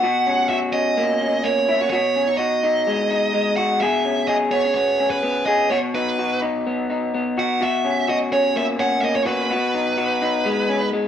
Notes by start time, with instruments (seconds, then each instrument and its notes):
Already playing: lead electric guitar F#5
0.03 clean electric guitar B2 F#4
0.27 clean electric guitar C#4
0.49 clean electric guitar F#4, lead electric guitar E5
0.73 clean electric guitar C#4, lead electric guitar D#5
0.97 clean electric guitar A#3
1.21 clean electric guitar C#4
1.44 clean electric guitar A#3, lead electric guitar C#5
1.69 clean electric guitar E4
1.81 clean electric guitar F#4
1.90 clean electric guitar B2 F#4, lead electric guitar C#5
2.16 clean electric guitar C#4
2.28 clean electric guitar D#4
2.37 clean electric guitar F#4, lead electric guitar D#5
2.63 clean electric guitar D#4
2.87 clean electric guitar G#3
3.10 clean electric guitar D#4
3.34 clean electric guitar G#3
3.57 clean electric guitar F#4, lead electric guitar F#5
3.81 clean electric guitar B2 G#4, lead electric guitar E5
4.05 clean electric guitar C#4
4.28 clean electric guitar G#4, lead electric guitar D#5
4.51 clean electric guitar B3, lead electric guitar C#5
4.65 clean electric guitar C#4
4.75 clean electric guitar B3, lead electric guitar C#5
5.00 clean electric guitar C#4
5.10 lead electric guitar B4
5.23 clean electric guitar B3
5.46 clean electric guitar G#4, lead electric guitar D#5
5.70 clean electric guitar B2 F#4, lead electric guitar C#5
5.95 clean electric guitar D#4, lead electric guitar B4
6.19 clean electric guitar F#4
6.42 clean electric guitar D#4
6.67 clean electric guitar B3
6.90 clean electric guitar D#4
7.14 clean electric guitar B3
7.38 clean electric guitar F#4, lead electric guitar F#5
7.61 clean electric guitar B2 F#4, lead electric guitar E5
7.85 clean electric guitar C#4
8.08 clean electric guitar F#4, lead electric guitar D#5
8.32 clean electric guitar C#4, lead electric guitar C#5
8.56 clean electric guitar A#3, lead electric guitar E5
8.79 clean electric guitar C#4, lead electric guitar F#5
9.01 clean electric guitar A#3, lead electric guitar D#5 E5
9.16 lead electric guitar C#5
9.26 clean electric guitar F#4, lead electric guitar B4
9.50 clean electric guitar B2 F#4
9.74 clean electric guitar D#4
9.98 clean electric guitar F#4
10.22 clean electric guitar D#4
10.45 clean electric guitar G#3
10.69 clean electric guitar C#4
10.81 clean electric guitar D#4
10.93 clean electric guitar G#3